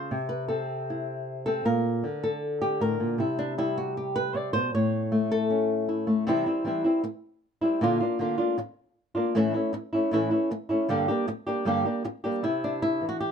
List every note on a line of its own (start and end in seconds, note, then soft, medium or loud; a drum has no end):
0.00 0.11 C#3 medium
0.00 0.28 C5 medium
0.11 1.63 C3 medium
0.29 0.48 B4 medium
0.48 1.46 C4 medium
0.48 0.87 A4 medium
0.90 1.64 E4 soft
1.46 1.63 C4 medium
1.46 1.65 A4 medium
1.65 2.04 A#2 medium
1.65 2.23 A#4 medium
2.04 3.19 D3 medium
2.24 2.61 A4 medium
2.62 2.81 G4 medium
2.80 3.00 A2 medium
2.80 3.19 A#4 medium
3.00 3.19 A#2 medium
3.18 4.33 C3 medium
3.18 3.38 G3 soft
3.18 3.58 E4 medium
3.39 3.58 D4 medium
3.58 4.73 G3 medium
3.58 3.77 E4 medium
3.78 3.96 F#4 medium
3.97 4.16 G4 medium
4.16 4.36 B4 loud
4.34 4.54 C3 medium
4.34 4.53 D5 loud
4.53 4.74 B2 medium
4.53 4.73 C5 loud
4.74 6.26 A2 medium
4.74 5.31 C#5 loud
5.12 6.06 A3 medium
5.32 5.70 A4 loud
5.50 6.25 C#4 soft
5.89 6.28 E4 soft
6.07 6.24 A3 medium
6.27 6.45 C3 medium
6.27 6.46 E3 medium
6.27 6.46 G3 medium
6.27 6.46 C4 medium
6.27 6.45 E4 medium
6.46 6.64 G3 soft
6.46 6.65 C4 medium
6.46 6.65 E4 medium
6.64 6.83 E3 medium
6.64 6.84 G3 medium
6.64 6.84 C4 medium
6.64 6.83 E4 medium
6.84 7.03 G3 soft
6.84 7.03 C4 soft
6.84 7.03 E4 soft
7.04 muted nylon-string guitar stroke medium
7.61 7.81 G3 soft
7.61 7.81 C4 soft
7.61 7.80 E4 medium
7.81 8.00 A#2 medium
7.81 8.00 D3 medium
7.81 8.00 A#3 medium
7.81 8.00 D4 medium
7.81 7.99 F4 medium
8.00 8.19 A#3 soft
8.00 8.20 D4 soft
8.00 8.19 F4 medium
8.19 8.38 D3 medium
8.19 8.38 A#3 medium
8.19 8.38 D4 medium
8.19 8.37 F4 medium
8.38 8.57 A#3 soft
8.38 8.58 D4 medium
8.38 8.57 F4 medium
8.58 muted nylon-string guitar stroke medium
9.15 9.35 A#3 soft
9.15 9.34 D4 soft
9.15 9.34 F4 medium
9.35 9.54 A2 medium
9.35 9.54 E3 medium
9.35 9.54 A3 medium
9.35 9.55 C#4 medium
9.35 9.53 E4 loud
9.54 9.73 A3 soft
9.54 9.73 C#4 medium
9.54 9.73 E4 medium
9.73 muted nylon-string guitar stroke medium
9.93 10.12 A3 soft
9.93 10.12 C#4 soft
9.93 10.11 E4 medium
10.11 10.31 A2 medium
10.11 10.31 E3 medium
10.11 10.31 A3 medium
10.11 10.31 C#4 medium
10.11 10.30 E4 medium
10.31 10.50 A3 soft
10.31 10.51 C#4 soft
10.31 10.50 E4 soft
10.51 muted nylon-string guitar stroke medium
10.69 10.89 A3 soft
10.69 10.89 C#4 soft
10.69 10.88 E4 soft
10.88 11.08 G2 medium
10.88 11.08 D3 medium
10.88 11.08 G3 medium
10.88 11.08 A#3 medium
10.88 11.08 D4 medium
10.88 11.07 G4 medium
11.08 11.27 G3 soft
11.08 11.27 A#3 medium
11.08 11.27 D4 medium
11.08 11.27 G4 medium
11.28 muted nylon-string guitar stroke medium
11.47 11.65 G3 soft
11.47 11.65 A#3 soft
11.47 11.66 D4 soft
11.47 11.66 G4 medium
11.65 11.85 G2 medium
11.65 11.85 D3 medium
11.65 11.85 G3 medium
11.65 11.85 A#3 medium
11.65 11.85 D4 medium
11.65 11.84 G4 medium
11.85 12.03 G3 soft
11.85 12.04 A#3 soft
11.85 12.04 D4 soft
11.85 12.04 G4 soft
12.05 muted nylon-string guitar stroke medium
12.24 12.44 G3 soft
12.24 12.44 A#3 soft
12.24 12.43 D4 soft
12.24 12.43 G4 medium
12.43 13.02 C3 medium
12.43 12.81 E4 medium
12.64 13.22 D4 medium
12.82 13.08 E4 medium
13.01 13.32 E3 medium
13.09 13.20 F#4 medium
13.20 13.32 G4 medium